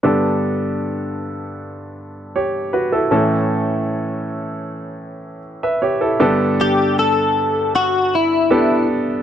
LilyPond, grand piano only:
<<
  \new Staff \with { instrumentName = "Grand piano" } { \time 4/4 \key g \lydian \tempo 4 = 78 << { r2. <g' cis''>8 <fis' b'>16 <e' a'>16~ | <e' a'>16 r2. <b' e''>16 <g' cis''>16 <e' a'>16~ | <e' a'>16 r2. r8. | } \\ { <b d' g' a'>1 | <a cis' e' a'>2.~ <a cis' e' a'>8 r8 | <b d' g' a'>2 r4 <b d' g' a'>4 | } >> }
  \new Staff \with { instrumentName = "Grand piano" } { \clef bass \time 4/4 \key g \lydian <g, d>1 | <a, e>1 | <g, d>1 | }
>>